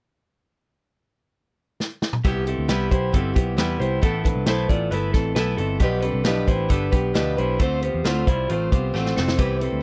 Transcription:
1.80 snare
2.02 snare
2.13 mid tom
2.24 C2 C3 G3 B3 E4 G4, kick, closed hi-hat
2.45 B3 C4 E4 G4 A4, closed hi-hat
2.59 D2
2.68 C2 C3 G3 B3 E4 G4 B4, snare, closed hi-hat
2.90 B1 B3 E4 G4 C5, kick, closed hi-hat
3.13 G1 G3 B3 C4 E4 G4 A4, kick, closed hi-hat
3.34 B1 B3 E4 G4, kick, closed hi-hat
3.57 E2 C3 G3 B3 E4 G4 B4, snare, closed hi-hat
3.79 C2 B3 E4 G4 C5, closed hi-hat
4.02 A1 A3 B3 E4 A4, kick, closed hi-hat
4.24 B3 D4 E4 A4 B4, kick, closed hi-hat
4.36 C2
4.46 B1 A3 B3 E4 A4 C5, snare, closed hi-hat
4.68 A1 B3 E4 F4 A4 D5, kick, closed hi-hat
4.91 G1 A3 B3 E4 A4 B4, closed hi-hat
5.13 A1 B3 C4 E4 A4, kick, snare, closed hi-hat
5.35 B1 A3 B3 E4 A4 B4, snare, closed hi-hat
5.57 G1 B3 C4 E4 A4, closed hi-hat
5.80 B1 B2 F3 B3 D4 G4 B4, kick, closed hi-hat
6.02 B3 C4 D4 G4 A4 B4, closed hi-hat
6.14 C2
6.24 B1 B2 F3 B3 D4 G4 B4, snare, closed hi-hat
6.47 A1 B3 D4 E4 G4 B4 C5, kick, closed hi-hat
6.69 G1 B3 D4 G4 A4 B4, kick, closed hi-hat
6.91 B1 B3 D4 G4 B4, kick, closed hi-hat
7.14 D2 B2 F3 B3 D4 G4 B4, snare, closed hi-hat
7.37 B1 B3 D4 E4 G4 B4 C5, closed hi-hat
7.59 D2 D3 A3 C4 F4 A4 C5, kick, closed hi-hat
7.82 B3 C4 F4 G4 C5, closed hi-hat
7.94 E2
8.04 D2 D3 A3 C4 F4 C5, snare, closed hi-hat
8.27 C2 G3 C4 E4 F4 C5, kick, closed hi-hat
8.49 A1 A3 C4 F4 C5, closed hi-hat
8.72 C2 B3 C4 F4 G4 C5, kick, closed hi-hat
8.94 A1 D3 A3 C4 F4 A4 C5, snare
9.06 snare
9.16 F1 C4 F4 A4 C5, snare
9.28 snare
9.37 C2 C3 E3 G3 B3 C4 E4 G4 B4, kick, closed hi-hat
9.59 G3 C4 E4 A4 B4, closed hi-hat
9.73 D2

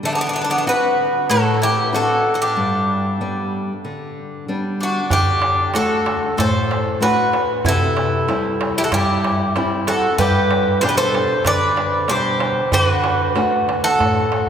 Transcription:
0.03 D3 A3 D4
0.13 B3 D4
0.18 B3 D4
0.27 B3 D4
0.33 B3 D4
0.41 B3 D4
0.50 B3 D4
0.58 B3 D4
0.66 C4 D4 F#4 B4
1.29 A2 F#4 A4
1.62 E4 G4
1.93 C4 D4 F#4 A4
2.34 F#4 A4
2.42 D4 G4
2.57 G2
3.21 G3 B3 D4
3.85 D3
4.48 G3 B3 D4
4.81 D4 F#4
5.10 D3 D4 G4, darbuka dum
5.26 darbuka tek
5.42 darbuka tek
5.74 A3 D4 F#4 A4, darbuka tek
5.90 darbuka tek
6.06 darbuka tek
6.23 darbuka tek
6.37 A2 A4 C5, darbuka tek, darbuka dum
6.71 darbuka tek
7.00 A3 D4 F#4 B4, darbuka tek
7.33 darbuka tek
7.65 C3 E4 A4, darbuka dum
7.81 darbuka tek
7.97 darbuka tek
8.28 G3 C4 E4, darbuka tek
8.45 darbuka tek
8.61 darbuka tek
8.76 E4 G4, darbuka tek
8.84 F#4 A4
8.92 G2 E4 G4, darbuka tek, darbuka dum
9.24 darbuka tek
9.56 G3 C4 E4, darbuka tek
9.87 F#4 A4, darbuka tek
10.18 G2 G4 B4, darbuka dum
10.35 darbuka tek
10.51 darbuka tek
10.81 B2 G3 D4 G4 C5, darbuka tek
10.89 G4 B4
10.97 A4 C5, darbuka tek
11.15 darbuka tek
11.29 darbuka tek
11.44 D3 B4 D5, darbuka tek, darbuka dum
11.77 darbuka tek
12.08 B2 G3 D4 G4 C5, darbuka tek
12.40 darbuka tek
12.72 D3 F#4 B4, darbuka dum
12.89 darbuka tek
13.04 darbuka tek
13.19 darbuka tek
13.35 A3 D4 F#4, darbuka tek
13.53 darbuka tek
13.69 darbuka tek
13.84 F#4 A4, darbuka tek
13.99 A2, darbuka tek, darbuka dum
14.16 darbuka tek
14.32 darbuka tek

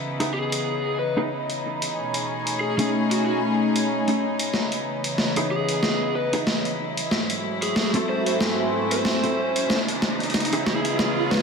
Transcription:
Already playing: C#3 E3 B3 D#4 E4 F#4 C#5 D#5 G#5
0.20 B3 D#4 E4 G#4, closed hi-hat
0.25 B5
0.34 G#4
0.52 closed hi-hat
0.99 B4
1.17 B3 D#4 E4 G#4
1.50 closed hi-hat
1.82 closed hi-hat
1.96 B2 A3 C#4 D#4 G#4
2.10 A3
2.14 closed hi-hat
2.31 G#5
2.47 closed hi-hat
2.61 G#4
2.78 A3 C#4 D#4 G#4, closed hi-hat
3.11 F#4, closed hi-hat
3.26 F#4
3.76 closed hi-hat
4.08 A3 C#4 D#4 G#4, closed hi-hat
4.39 closed hi-hat
4.53 C#3 E3 B3 E4, snare, riser
4.72 closed hi-hat
4.80 D#5
5.04 closed hi-hat
5.18 snare
5.36 B3 D#4 E4 G#4, closed hi-hat
5.51 G#4
5.69 closed hi-hat
5.83 snare
6.15 B4
6.33 B3 D#4 E4 G#4, closed hi-hat
6.47 snare
6.65 closed hi-hat
6.97 closed hi-hat
7.11 G#2 F#3 A3 C4 F#4, snare
7.24 A4
7.30 closed hi-hat
7.62 G#4 E5, closed hi-hat
7.76 G#4, snare
7.83 G#5
7.94 C4 E4 F#4 A4, closed hi-hat
8.09 C5
8.26 C5 C6, closed hi-hat
8.41 snare
8.91 C5, closed hi-hat
9.05 snare
9.23 C4 E4 F#4 A4, closed hi-hat
9.56 closed hi-hat
9.70 C#3 E3 B3 D#4, snare
9.88 closed hi-hat
9.93 C#5
10.02 snare
10.20 closed hi-hat
10.23 D#5, closed hi-hat
10.30 closed hi-hat
10.34 snare, closed hi-hat
10.39 B5, closed hi-hat
10.45 closed hi-hat
10.53 B3 D#4 E4 G#4, closed hi-hat
10.67 G#4, snare
10.85 closed hi-hat
10.99 snare
11.31 B4, snare
11.34 snare
11.37 snare

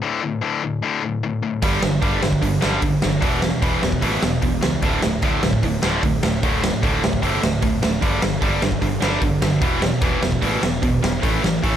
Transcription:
0.02 D2 A2 D3
0.22 D2 A2
0.41 D2 A2 D3
0.63 D2 A2
0.82 D2 A2 D3
1.02 D2 A2
1.23 D2 A2
1.43 D2 A2
1.62 G1 G2 D3 G3, kick, open hi-hat
1.81 G1 G2 D3, snare
2.02 G1 G2 D3 G3, kick, open hi-hat
2.22 G1 G2 D3, snare
2.33 kick
2.42 G1 G2 D3, kick, open hi-hat
2.61 G1 G2 D3 G3, snare
2.82 G1 G2 D3, kick, open hi-hat
3.02 G1 G2 D3, snare
3.21 E1 E2 B2 E3, kick, open hi-hat
3.42 E2 B2, snare
3.62 E1 E2 B2 E3, kick, open hi-hat
3.82 E1 E2 B2, snare
3.92 kick
4.01 A1 E2 B2 E3, kick, open hi-hat
4.22 E1 E2 B2, snare
4.42 E1 E2 B2, kick, open hi-hat
4.61 C#2 E2 B2, snare
4.82 D1 D2 A2 D3, kick, open hi-hat
5.02 D1 D2 A2, snare
5.22 D1 D2 A2 D3, kick, open hi-hat
5.43 D1 D2 A2, snare
5.53 kick
5.63 D1 D2 A2, kick, open hi-hat
5.82 D1 D2 A2 D3, snare
6.02 D1 D2 A2, kick, open hi-hat
6.23 D1 D2 A2, snare
6.43 D1 D2 A2 D3, kick, open hi-hat
6.63 D2 A2, snare
6.82 D1 D2 A2 D3, kick, open hi-hat
7.03 D1 D2 A2, snare
7.13 kick
7.22 G1 D2 A2 D3, kick, open hi-hat
7.42 D1 D2 A2, snare
7.62 D1 D2 A2, kick, open hi-hat
7.82 D1 D2 A2, snare
8.02 G1 G2 D3 G3, kick, open hi-hat
8.22 G1 G2 D3, snare
8.42 G1 G2 D3 G3, kick, open hi-hat
8.62 G1 G2 D3, snare
8.72 kick
8.82 G1 G2 D3, kick, open hi-hat
9.02 G1 G2 D3 G3, snare
9.22 G1 G2 D3, kick, open hi-hat
9.42 G1 G2 D3, snare
9.61 E1 E2 B2 E3, kick, open hi-hat
9.82 E2 B2, snare
10.01 E1 E2 B2 E3, kick, open hi-hat
10.22 E1 E2 B2, snare
10.32 kick
10.42 A1 E2 B2 E3, kick, open hi-hat
10.63 E1 E2 B2, snare
10.83 E1 E2 B2, kick, open hi-hat
11.03 E1 E2 B2, snare
11.22 A1 A2 E3 A3, kick, open hi-hat
11.42 A1 A2 E3, snare
11.62 A1 A2 E3 A3, kick, open hi-hat

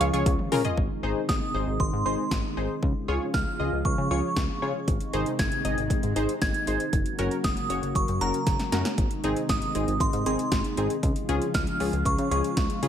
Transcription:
Already playing: C#3 F3 G#3 F4 C#6
0.01 C#2 F4 G#4 C#5 F5, closed hi-hat
0.13 C#2 F4 G#4 C#5, closed hi-hat
0.26 C#2, kick, closed hi-hat, high tom
0.39 mid tom
0.52 C#3 F4 G#4 A#4, mid tom, open hi-hat
0.65 F4 G#4 D#5, closed hi-hat, floor tom
0.77 G#1 C3 D#3 G#3 D#4, kick
1.03 G#1 D#4 G#4 C5
1.29 G#1 D#6, kick, snare
1.54 G#1 D#4 G#4 C5
1.67 G#1
1.80 G#1 C6, kick
1.93 G#2
2.06 G#1 D#4 G#4 C5 C6
2.31 G#1, kick, snare
2.57 G#1 D#4 G#4 C5
2.83 C#2 C#3 F3 G#3 F4, kick
3.08 C#2 F4 G#4 C#5
3.34 C#2 F6, kick, snare
3.60 C#2 F4 G#4 D#5
3.72 C#2
3.85 C#2 C#6, kick
3.98 C#3
4.11 C#2 F4 G#4 C#5 C#6
4.36 C#2, kick, snare
4.62 C#3 F4 G#4 C#5
4.88 G#1 C3 D#3 G#3 D#4, kick, closed hi-hat
5.00 closed hi-hat
5.13 G#1 D#4 G#4 C5, closed hi-hat
5.26 closed hi-hat
5.39 G#1 G#6, kick, snare, closed hi-hat
5.52 closed hi-hat
5.65 G#1 D#4 G#4 D#5, closed hi-hat
5.78 G#1, closed hi-hat
5.90 G#1, kick, closed hi-hat
6.03 G#2, closed hi-hat
6.16 G#1 D#4 G#4 C5, closed hi-hat
6.29 closed hi-hat
6.42 G#1 G#6, kick, snare, closed hi-hat
6.54 closed hi-hat
6.67 G#1 D#4 G#4 C5, closed hi-hat
6.80 closed hi-hat
6.93 F#1 C#3 F#3 A#3 F#4, kick, closed hi-hat
7.06 closed hi-hat
7.19 F#1 C#4 F#4 A#4, closed hi-hat
7.31 closed hi-hat
7.44 F#1 D#6, kick, snare, closed hi-hat
7.57 closed hi-hat
7.70 F#1 C#4 F#4 C#5, closed hi-hat
7.83 F#1, closed hi-hat
7.95 F#1 C#6, kick, closed hi-hat
8.08 F#2, closed hi-hat
8.21 F#1 C#4 F#4 A#4 A#5, closed hi-hat
8.34 closed hi-hat
8.47 F#1, kick, snare, closed hi-hat
8.59 snare, closed hi-hat
8.72 F#2 C#4 F#4 A#4, snare, closed hi-hat
8.85 snare, closed hi-hat
8.98 G#1 C3 D#3 G#3 D#4, kick, closed hi-hat
9.11 closed hi-hat
9.24 G#1 C4 D#4 G#4, closed hi-hat
9.36 closed hi-hat
9.49 G#1 D#6, kick, snare, closed hi-hat
9.62 closed hi-hat
9.75 G#1 C4 D#4 G#4, closed hi-hat
9.88 G#1, closed hi-hat
10.00 G#1 C6, kick, closed hi-hat
10.13 G#2, closed hi-hat
10.26 G#1 C4 D#4 G#4 C6, closed hi-hat
10.39 closed hi-hat
10.52 G#1, kick, snare, closed hi-hat
10.64 closed hi-hat
10.77 G#1 C4 D#4 G#4, closed hi-hat
10.90 closed hi-hat
11.03 C#2 C#3 F3 F4, kick, closed hi-hat
11.16 closed hi-hat
11.29 C#2 C#4 F4 G#4, closed hi-hat
11.42 closed hi-hat
11.54 C#2 F6, kick, snare, closed hi-hat
11.67 closed hi-hat
11.80 C#2 C#4 F4 G#4, open hi-hat
11.93 C#2, closed hi-hat
12.05 C#2 C#6, kick, closed hi-hat
12.18 C#3, closed hi-hat
12.31 C#2 C#4 F4 G#4 C#6, closed hi-hat
12.44 closed hi-hat
12.57 C#2, kick, snare, closed hi-hat
12.70 closed hi-hat
12.83 C#3 C#4 F4 G#4, closed hi-hat

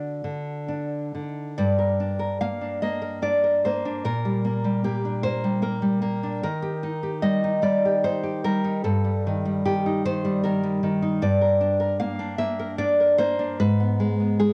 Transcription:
Already playing: D3 D4 F#4
0.24 D3
0.68 D4
1.15 D3
1.58 G2 D5
1.79 A#4
2.00 D4
2.19 A#4
2.41 A#3 F5
2.61 D4
2.82 A#3 D#5
3.02 A#4
3.22 D4 D5
3.44 A#4
3.65 A#3 C5
3.85 D4
4.05 A#2 A#4
4.25 G3
4.45 A#3
4.64 G3
4.84 A#3 G4
5.05 D4
5.23 A#3 C5
5.44 G3
5.62 A#3 A#4
5.82 G3
6.02 A#3
6.23 D4
6.43 D#3 A#4
6.62 G4
6.83 D#4
7.03 G4
7.22 G3 D#5
7.44 D#4
7.62 G3 D5
7.85 G4
8.04 D#4 C5
8.23 G4
8.44 G3 A#4
8.64 D#4
8.84 G2 A4
9.04 G3
9.27 D#3
9.45 G3
9.65 D#3 G4
9.86 D#4
10.05 D#3 C5
10.25 G3
10.43 D#3 A#4
10.63 G3
10.83 D#3
11.02 D#4
11.22 G2 D5
11.41 A#4
11.61 D4
11.80 A#4
12.00 A#3 F5
12.19 D4
12.38 A#3 E5
12.59 A#4
12.78 D4 D5
13.00 A#4
13.18 A#3 C5
13.39 D4
13.60 G#2 B4
13.80 B3
14.00 G#3
14.20 B3
14.40 G#3 G#4

